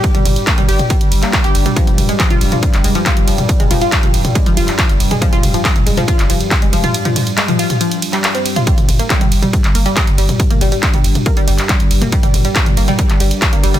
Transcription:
<<
  \new Staff \with { instrumentName = "Synth arpeggio sound" } { \clef bass \time 4/4 \key f \dorian \tempo 4 = 139 r16 g16 r8 bes16 g16 g'16 r16 g16 r8 bes16 g16 g'16 r16 g16 | f16 r8 aes16 f16 f'16 r16 f16 r8 aes16 f16 f'16 r16 f16 r16 | r16 aes16 f16 f'16 r16 f16 r8 aes16 f16 f'16 r16 f16 r8 aes16 | f16 f'16 r16 f16 r8 aes16 f16 f'16 r16 f16 r8 aes16 f16 f'16 |
r16 f16 r8 aes16 f16 f'16 r16 f16 r8 g16 r16 c'16 r16 f'16 | g16 r8 bes16 g16 g16 r16 g16 r8 bes16 g16 g16 r16 g16 r16 | r16 bes16 g16 g16 r16 g16 r8 bes16 g16 g16 r16 g16 r8 bes16 | g16 g16 r16 g16 r8 bes16 g16 g16 r16 g16 r8 bes16 g16 g16 | }
  \new Staff \with { instrumentName = "Synth drone" } { \clef bass \time 4/4 \key f \dorian <g, g>1~ | <g, g>1~ | <g, g>1~ | <g, g>1~ |
<g, g>1 | <g, g>1~ | <g, g>1~ | <g, g>1 | }
  \new Staff \with { instrumentName = "Sub bass" } { \clef bass \time 4/4 \key f \dorian r16 g,,16 g,,16 r8 g,,16 g,,16 r8 g,,16 g,,16 r8 g,,16 g,,16 r16 | r16 f,,16 f,,16 r8 f,,16 f,,16 r8 f,,16 f,,16 r8 f,,16 f,,16 r16 | r16 f,,16 f,,16 r8 f,,16 f,,16 r8 f,,16 f,,16 r8 f,,16 f,,16 r16 | r16 f,,16 f,,16 r8 f,,16 f,,16 r8 f,,16 f,,16 r8 f,,16 f,,16 r16 |
r1 | r16 g,,16 g,,16 r8 g,,16 g,,16 r8 g,,16 g,,16 r8 g,,16 g,,16 r16 | r16 g,,16 g,,16 r8 g,,16 g,,16 r8 g,,16 g,,16 r8 g,,16 g,,16 r16 | r16 g,,16 g,,16 r8 g,,16 g,,16 r8 g,,16 g,,16 r8 g,,16 g,,16 r16 | }
  \new DrumStaff \with { instrumentName = "Drums" } \drummode { \time 4/4 <hh bd cymr>16 <hh toml>16 <hho cymr toml>16 hh16 <hc hh bd cymr>16 <hh toml>16 <hho cymr>16 <hh toml>16 <hh bd cymr>16 hh16 <hho cymr>16 <hc hh>16 <hc hh bd cymr>16 hh16 <hho cymr>16 <hh toml>16 | <hh bd cymr>16 <hh toml>16 <hho cymr toml>16 hh16 <hc hh bd cymr>16 <hh toml>16 <hho cymr>16 <hh toml>16 <hh bd cymr>16 <hc hh>16 <hho cymr>16 hh16 <hc hh bd cymr>16 hh16 <hho cymr>16 <hh toml>16 | <hh bd cymr>16 <hh toml>16 <hho cymr toml>16 hh16 <hc hh bd cymr>16 <hh toml>16 <hho cymr>16 <hh toml>16 <hh bd cymr>16 hh16 <hho cymr>16 <hc hh>16 <hc hh bd cymr>16 hh16 <hho cymr>16 <hh toml>16 | <hh bd cymr>16 <hh toml>16 <hho cymr toml>16 hh16 <hc hh bd cymr>16 <hh toml>16 <hho cymr>16 <hh toml>16 <hh bd cymr>16 <hc hh>16 <hho cymr>16 hh16 <hc hh bd cymr>16 hh16 <hho cymr>16 <hh toml>16 |
<hh cymr>16 <hh toml>16 <hho cymr toml>16 hh16 <hc hh cymr>16 <hh toml>16 <hho cymr>16 <hh toml>16 <hh cymr>16 hh16 <hho cymr>16 <hc hh>16 <hc hh cymr>16 hh16 <hho cymr>16 <hh toml>16 | <hh bd cymr>16 <hh toml>16 <hho cymr toml>16 hh16 <hc hh bd cymr>16 <hh toml>16 <hho cymr>16 <hh toml>16 <hh bd cymr>16 <hc hh>16 <hho cymr>16 hh16 <hc hh bd cymr>16 hh16 <hho cymr>16 <hh toml>16 | <hh bd cymr>16 <hh toml>16 <hho cymr toml>16 hh16 <hc hh bd cymr>16 <hh toml>16 <hho cymr>16 <hh toml>16 <hh bd cymr>16 hh16 <hho cymr>16 <hc hh>16 <hc hh bd cymr>16 hh16 <hho cymr>16 <hh toml>16 | <hh bd cymr>16 <hh toml>16 <hho cymr toml>16 hh16 <hc hh bd cymr>16 <hh toml>16 <hho cymr>16 <hh toml>16 <hh bd cymr>16 <hc hh>16 <hho cymr>16 hh16 <hc hh bd cymr>16 hh16 <hho cymr>16 <hh toml>16 | }
>>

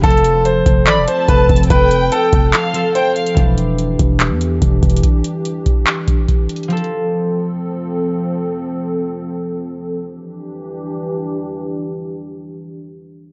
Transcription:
<<
  \new Staff \with { instrumentName = "Violin section" } { \time 4/4 \key e \phrygian \tempo 4 = 144 r2 b''8 a''4. | g''2 f''4 g''8 f''8 | r1 | r1 |
r1 | r1 | r1 | r1 | }
  \new Staff \with { instrumentName = "Grand piano" } { \time 4/4 \key e \phrygian a'4 c''4 d''8 c''8 b'8 r8 | b'4 a'2 c''8 r8 | r1 | r1 |
r1 | r1 | r1 | r1 | }
  \new Staff \with { instrumentName = "Analog synth pad" } { \time 4/4 \key e \phrygian <f c' a'>1~ | <f c' a'>1 | <e d' g'>1~ | <e d' g'>1 |
<f c' a'>1~ | <f c' a'>1 | <e d' g'>1~ | <e d' g'>1 | }
  \new Staff \with { instrumentName = "Harp" } { \time 4/4 \key e \phrygian <f c' a'>1~ | <f c' a'>2~ <f c' a'>8 <f c' a'>4. | <e d' g'>1~ | <e d' g'>1 |
<f c' a'>1~ | <f c' a'>2~ <f c' a'>8 r4. | r1 | r1 | }
  \new Staff \with { instrumentName = "808-style bass" } { \clef bass \time 4/4 \key e \phrygian f,,4. f,,8 a,,16 f,,16 r8 f,,8 f,,8 | f,,4 r8 f,,8 r2 | e,,4. e,,8. e,8. e,,8 e,,8 | r1 |
r1 | r1 | r1 | r1 | }
  \new DrumStaff \with { instrumentName = "Drums" } \drummode { \time 4/4 \tuplet 3/2 { <hh bd>16 hh16 hh16 hh16 r16 r16 } hh8 <hh bd>8 <hc hh>8 hh8 \tuplet 3/2 { <hh bd>16 r16 r16 <hh bd>16 hh16 hh16 } | <hh bd>8 hh8 hh8 <hh bd>8 <hc hh>8 hh8 hh8 hh16 hh16 | <hh bd>8 hh8 hh8 <hh bd>8 <hc hh>8 hh8 \tuplet 3/2 { <hh bd>16 r16 r16 <hh bd>16 hh16 hh16 } | <hh bd>8 hh8 hh8 <hh bd>8 <hc hh>8 <hh bd>8 \tuplet 3/2 { <hh bd>16 r16 r16 hh16 hh16 hh16 } |
\tuplet 3/2 { hh16 hh16 hh16 r16 r16 r16 } r4 r4 r4 | r4 r4 r4 r4 | r4 r4 r4 r4 | r4 r4 r4 r4 | }
>>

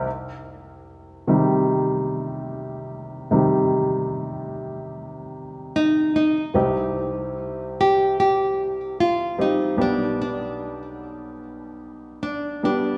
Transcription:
<<
  \new Staff \with { instrumentName = "Nylon-string guitar" } { \time 4/4 \key c \minor \tempo 4 = 74 r1 | r2. ees'8 ees'8~ | ees'4 r8 g'8 g'4 f'8 ees'8 | d'8 d'2 r8 d'8 d'8 | }
  \new Staff \with { instrumentName = "Grand piano" } { \time 4/4 \key c \minor r1 | r1 | <g c' ees' g'>2 r4. <g c' ees' g'>8 | <g b d' g'>2 r4. <g b d' g'>8 | }
  \new Staff \with { instrumentName = "Grand piano" } { \clef bass \time 4/4 \key c \minor r4. <c ees g>2~ <c ees g>8 | <c ees g>1 | <c, c>1 | <b,, b,>1 | }
>>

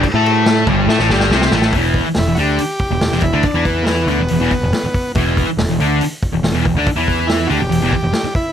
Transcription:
<<
  \new Staff \with { instrumentName = "Transistor combo organ" } { \time 4/4 \key e \minor \tempo 4 = 140 r1 | r4 e'8 <fis' g'>2 e'8 | d'8 b8 <ais b>2. | r1 |
r4 e'8 <fis' g'>2 e'8 | }
  \new Staff \with { instrumentName = "Distorted electric guitar" } { \clef bass \time 4/4 \key e \minor r16 <a a'>4~ <a a'>16 <g, g>8 <a a'>16 <a, a>16 <g, g>8 <c c'>8 <a, a>8 | <e, e>8. r16 e,16 e,16 <d d'>8 r8. e,16 e,16 <e, e>16 e,16 <d d'>16 | r16 <e e'>4~ <e e'>16 <d d'>16 e,16 e,16 <e, e>16 r16 e,16 r4 | <e, e>8. r16 e,16 e,16 <d d'>8 r8. e,16 e,16 <e, e>16 e,16 <d d'>16 |
r16 <e e'>4~ <e e'>16 <d d'>16 e,16 e,16 <e, e>16 r16 e,16 r4 | }
  \new Staff \with { instrumentName = "Picked electric bass" } { \clef bass \time 4/4 \key e \minor r16 a,4~ a,16 g,,8 a,16 a,,16 g,,8 c,8 a,,8 | e,,8. r16 e,,16 e,,16 d,8 r8. e,,16 e,,16 e,,16 e,,16 d,16 | r16 e,4~ e,16 d,16 e,,16 e,,16 e,,16 r16 e,,16 r4 | e,,8. r16 e,,16 e,,16 d,8 r8. e,,16 e,,16 e,,16 e,,16 d,16 |
r16 e,4~ e,16 d,16 e,,16 e,,16 e,,16 r16 e,,16 r4 | }
  \new DrumStaff \with { instrumentName = "Drums" } \drummode { \time 4/4 <cymc bd>8 cymc8 <cymc sn>8 <cymc bd>8 sn16 sn16 sn16 sn16 sn16 sn16 sn16 sn16 | <hho bd>8 <hho bd>8 <hho sn>8 hho8 hho8 <hho bd>8 <hho sn>16 sn16 <hho bd>8 | <hho bd>8 <hho bd>8 <hho sn>8 hho8 hho8 <hho bd>8 <hho sn>8 <hho bd>8 | <hho bd>8 <hho bd>8 <hho sn>8 hho8 hho8 <hho bd>8 <hho sn>8 <hho bd>8 |
<hho bd>8 <hho bd>8 <hho sn>8 hho8 hho8 <hho bd>8 <hho sn>8 <hho bd>8 | }
>>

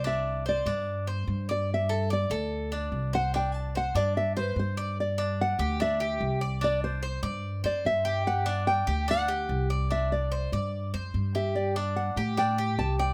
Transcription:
<<
  \new Staff \with { instrumentName = "Nylon-string guitar" } { \time 4/4 \key c \lydian \tempo 4 = 146 e''4 d''4. r4 d''8 | e''4 d''4. r4 fis''8 | g''8 a''8 fis''8 d''8 e''8 <b' c''>8 c''4 | d''4 fis''4 e''4. r8 |
d''8 c''2 d''8 e''4 | fis''4 g''4 fis''4. r8 | e''8 d''2 r4 e''8 | d''4 fis''4 g''4 a''8 g''8 | }
  \new Staff \with { instrumentName = "Cuban tres" } { \time 4/4 \key c \lydian d'4 c''8 d'4 c''4 d''8~ | d''8 a'8 d''8 a'4 d'4 c''8 | d'4 c''8 d'4 c''4 d''8 | r8 d'4 g'8 d'8 g'4 d''8 |
d'4 c''8 d''4 c''4 g'8~ | g'8 d'4 g'8 d'8 g'4 d''8 | d'4 c''8 d''4 c''4 g'8~ | g'8 d'4 g'8 d'8 g'4 d''8 | }
  \new Staff \with { instrumentName = "Upright bass" } { \clef bass \time 4/4 \key c \lydian c,4. g,4. g,4~ | g,4. d,4. c,4~ | c,4. g,4. g,4~ | g,4. d,4. c,4~ |
c,4. g,4 fis,8 g,4~ | g,4. d,4. c,4~ | c,4. g,4 fis,8 g,4~ | g,4. a,4. c,4 | }
>>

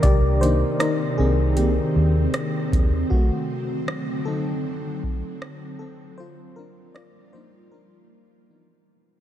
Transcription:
<<
  \new Staff \with { instrumentName = "FM electric piano" } { \time 4/4 \key c \minor \tempo 4 = 78 <g' d''>8 <ees' c''>8 <ees' bes'>8 <c' aes'>8 <bes g'>4. r8 | <a fis'>4. <c' a'>2 <c' a'>8 | <f' c''>8 <d' bes'>8 <f' d''>8 <ees' c''>8 <d' bes'>4. r8 | }
  \new Staff \with { instrumentName = "FM electric piano" } { \time 4/4 \key c \minor r8 <ees bes d'>8 r2. | r4. <fis c' ees'>8 r2 | r4. <f bes d'>4. <e b dis'>4 | }
  \new Staff \with { instrumentName = "Ambient pad" } { \clef bass \time 4/4 \key c \minor << { c'1~ | c'1 | <bes f'>2. <e b>4 | } \\ { <c ees>1 | <d fis>1 | <f g>2. <b, gis>4 | } >> }
  \new Staff \with { instrumentName = "Fingered electric bass" } { \clef bass \time 4/4 \key c \minor c,4 r8 c,4 ees,8 r8 ees,8 | r1 | r1 | }
  \new DrumStaff \with { instrumentName = "Drums" } \drummode { \time 4/4 <hh bd>8 hh8 <hh ss>4 hh4 <hh ss>8 <hh bd>8 | bd4 ss4 r8 bd8 ss4 | r4 ss4 r4 r4 | }
>>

